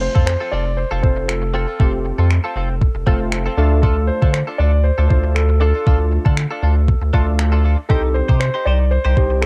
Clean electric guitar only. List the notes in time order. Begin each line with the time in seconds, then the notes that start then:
0.02 muted clean electric guitar stroke
0.15 C4 F4 A4
0.27 muted clean electric guitar stroke
0.40 C4 F4 A4
0.52 C4 F4 A4
0.66 muted clean electric guitar stroke
0.78 muted clean electric guitar stroke
0.91 C4 F4 A4
1.03 muted clean electric guitar stroke
1.16 muted clean electric guitar stroke
1.28 muted clean electric guitar stroke
1.42 muted clean electric guitar stroke
1.54 C4 F4 A4
1.67 C4 F4 A4
1.79 C4 F4 A4
1.93 muted clean electric guitar stroke
2.05 muted clean electric guitar stroke
2.18 C4 F4 A4
2.30 muted clean electric guitar stroke
2.44 C4 F4 A4
2.56 C4 F4 A4
2.70 muted clean electric guitar stroke
2.81 muted clean electric guitar stroke
2.95 muted clean electric guitar stroke
3.07 C4 F4 A4
3.20 muted clean electric guitar stroke
3.32 muted clean electric guitar stroke
3.46 C4 F4 A4
3.57 D4 F4 A4
3.71 muted clean electric guitar stroke
3.83 D4 F4 A4
3.97 muted clean electric guitar stroke
4.09 muted clean electric guitar stroke
4.22 D4 F4 A4
4.34 muted clean electric guitar stroke
4.47 D4 F4 A4
4.59 D4 F4 A4
4.73 muted clean electric guitar stroke
4.85 muted clean electric guitar stroke
4.98 D4 F4 A4
5.10 muted clean electric guitar stroke
5.24 muted clean electric guitar stroke
5.36 muted clean electric guitar stroke
5.49 muted clean electric guitar stroke
5.61 D4 F4 A4
5.74 D4 F4 A4
5.86 D4 F4 A4
6.00 muted clean electric guitar stroke
6.12 muted clean electric guitar stroke
6.25 D4 F4 A4
6.37 muted clean electric guitar stroke
6.51 D4 F4 A4
6.63 D4 F4 A4
6.76 muted clean electric guitar stroke
6.88 muted clean electric guitar stroke
7.02 muted clean electric guitar stroke
7.13 D4 F4 A4
7.27 muted clean electric guitar stroke
7.39 muted clean electric guitar stroke
7.52 D4 F4 A4
7.64 D4 F4 A4
7.78 muted clean electric guitar stroke
7.89 D#4 G4 C5
8.03 muted clean electric guitar stroke
8.15 muted clean electric guitar stroke
8.29 D#4 G4 C5
8.41 muted clean electric guitar stroke
8.54 D#4 G4 C5
8.66 D#4 G4 C5
8.80 muted clean electric guitar stroke
8.91 muted clean electric guitar stroke
9.05 D#4 G4 C5
9.17 muted clean electric guitar stroke
9.30 muted clean electric guitar stroke
9.42 muted clean electric guitar stroke